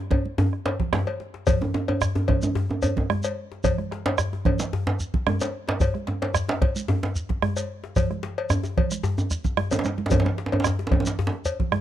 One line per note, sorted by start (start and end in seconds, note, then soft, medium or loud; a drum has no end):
0.00 0.93 C3 medium
0.11 bombo low loud
0.11 cowbell soft
0.11 djembe tone medium
0.11 high conga soft
0.11 low conga medium
0.25 high conga soft
0.38 djembe slap medium
0.38 djembe tone medium
0.38 djembe bass medium
0.53 bombo rim soft
0.66 cowbell soft
0.66 djembe slap medium
0.66 djembe slap soft
0.79 bombo low medium
0.79 djembe slap medium
0.79 low conga medium
0.93 bombo rim medium
0.93 djembe slap loud
0.93 high conga medium
0.93 djembe bass medium
1.07 cowbell soft
1.07 high conga soft
1.07 djembe bass soft
1.20 djembe slap soft
1.20 high conga soft
1.34 djembe slap medium
1.47 bombo low loud
1.47 cowbell medium
1.47 djembe bass medium
1.47 low conga medium
1.47 shekere medium
1.61 djembe tone medium
1.61 high conga medium
1.61 djembe tone medium
1.74 bombo rim soft
1.74 djembe slap medium
1.74 djembe tone medium
1.88 cowbell medium
1.88 djembe tone medium
2.01 bombo rim medium
2.01 djembe slap soft
2.01 djembe bass medium
2.01 shekere medium
2.15 djembe slap medium
2.15 djembe tone medium
2.15 high conga soft
2.15 djembe tone medium
2.28 bombo rim soft
2.28 bombo low medium
2.28 cowbell medium
2.28 djembe slap soft
2.28 djembe tone medium
2.28 low conga medium
2.42 djembe slap soft
2.42 high conga medium
2.42 djembe tone medium
2.42 shekere soft
2.55 djembe slap medium
2.55 djembe bass medium
2.69 djembe tone medium
2.69 high conga soft
2.69 djembe tone medium
2.82 cowbell medium
2.82 djembe tone medium
2.82 shekere medium
2.97 bombo low medium
2.97 djembe slap medium
2.97 djembe tone medium
2.97 low conga medium
3.10 bombo rim medium
3.10 high conga medium
3.10 djembe bass medium
3.23 cowbell medium
3.23 djembe tone medium
3.23 shekere soft
3.52 djembe slap soft
3.64 bombo low medium
3.64 cowbell medium
3.64 low conga medium
3.64 djembe bass medium
3.64 shekere medium
3.78 bombo rim soft
3.78 high conga medium
3.78 djembe tone soft
3.91 bombo rim soft
3.91 djembe slap medium
4.06 cowbell medium
4.06 djembe slap loud
4.18 bombo rim medium
4.18 djembe slap soft
4.18 djembe bass medium
4.18 shekere medium
4.32 djembe slap medium
4.32 high conga soft
4.32 djembe tone medium
4.45 bombo rim soft
4.45 bombo low loud
4.45 cowbell medium
4.45 djembe tone medium
4.45 low conga medium
4.59 djembe slap medium
4.59 high conga medium
4.59 shekere soft
4.73 djembe slap medium
4.73 djembe bass medium
4.87 djembe slap loud
4.87 high conga soft
4.87 djembe tone medium
5.00 shekere soft
5.14 bombo low medium
5.14 djembe slap medium
5.14 low conga medium
5.26 bombo rim loud
5.26 djembe tone medium
5.26 high conga medium
5.26 djembe bass medium
5.41 cowbell soft
5.41 djembe slap medium
5.41 djembe tone medium
5.41 shekere soft
5.68 djembe slap medium
5.68 djembe slap loud
5.80 bombo low loud
5.80 cowbell medium
5.80 djembe bass medium
5.80 low conga medium
5.80 shekere medium
5.94 bombo rim soft
5.94 djembe tone medium
5.94 high conga medium
6.07 bombo rim soft
6.07 djembe slap medium
6.07 djembe tone medium
6.22 cowbell soft
6.22 djembe slap medium
6.34 bombo rim loud
6.34 djembe slap soft
6.34 djembe bass medium
6.34 shekere medium
6.49 djembe slap medium
6.49 djembe slap loud
6.49 djembe tone medium
6.49 high conga soft
6.61 bombo low loud
6.61 cowbell medium
6.61 djembe slap soft
6.61 low conga medium
6.76 djembe slap soft
6.76 high conga medium
6.76 shekere soft
6.88 djembe slap medium
6.88 djembe tone medium
6.88 djembe bass medium
7.03 djembe slap medium
7.03 djembe tone medium
7.03 high conga soft
7.16 shekere medium
7.29 bombo low medium
7.29 djembe slap medium
7.29 low conga medium
7.42 bombo rim medium
7.42 high conga medium
7.42 djembe bass medium
7.56 cowbell soft
7.56 djembe tone medium
7.56 shekere soft
7.84 djembe slap medium
7.96 bombo rim soft
7.96 bombo low medium
7.96 cowbell medium
7.96 djembe slap soft
7.96 djembe bass medium
7.96 low conga medium
7.96 shekere medium
8.10 bombo rim soft
8.10 djembe slap soft
8.10 djembe tone medium
8.10 high conga medium
8.23 djembe slap medium
8.23 high conga soft
8.38 cowbell soft
8.50 bombo rim medium
8.50 djembe slap soft
8.50 djembe tone medium
8.50 high conga soft
8.50 djembe bass medium
8.50 shekere medium
8.63 djembe slap medium
8.63 djembe tone medium
8.63 shekere soft
8.77 bombo low medium
8.77 cowbell soft
8.77 low conga medium
8.91 bombo rim soft
8.91 high conga medium
8.91 shekere soft
9.04 djembe slap medium
9.04 djembe bass medium
9.04 shekere soft
9.18 djembe slap soft
9.18 djembe tone medium
9.18 high conga soft
9.18 shekere soft
9.31 bombo rim soft
9.31 shekere medium
9.44 bombo low medium
9.44 djembe slap medium
9.44 high conga soft
9.44 low conga medium
9.44 shekere soft
9.57 bombo rim medium
9.57 high conga medium
9.57 djembe bass medium
9.71 cowbell soft
9.71 djembe tone medium
9.71 djembe tone loud
9.71 low conga soft
9.71 shekere soft
9.79 djembe slap medium
9.84 bombo rim soft
9.84 djembe slap medium
9.84 high conga medium
9.84 shekere soft
9.98 djembe slap medium
9.98 high conga medium
10.06 djembe slap medium
10.10 bombo low loud
10.10 cowbell medium
10.10 djembe tone loud
10.10 djembe bass medium
10.10 low conga medium
10.10 shekere medium
10.20 djembe slap medium
10.25 bombo rim soft
10.25 djembe slap medium
10.25 djembe tone medium
10.25 high conga medium
10.38 bombo rim soft
10.38 djembe slap medium
10.46 djembe slap medium
10.52 cowbell soft
10.52 djembe tone loud
10.60 djembe slap medium
10.64 bombo rim medium
10.64 djembe slap soft
10.64 djembe slap medium
10.64 djembe bass medium
10.64 shekere medium
10.79 djembe slap medium
10.79 high conga soft
10.79 djembe tone medium
10.87 djembe slap medium
10.91 bombo rim soft
10.91 bombo low loud
10.91 cowbell soft
10.91 djembe tone loud
10.91 low conga medium
11.00 djembe slap medium
11.06 djembe slap soft
11.06 djembe slap medium
11.06 high conga medium
11.06 shekere medium
11.19 djembe slap medium
11.19 djembe bass medium
11.27 djembe slap medium
11.33 high conga soft
11.33 djembe tone soft
11.45 cowbell soft
11.45 shekere medium
11.60 bombo low medium
11.60 djembe slap medium
11.60 low conga medium
11.72 bombo rim medium
11.72 high conga medium
11.72 djembe bass medium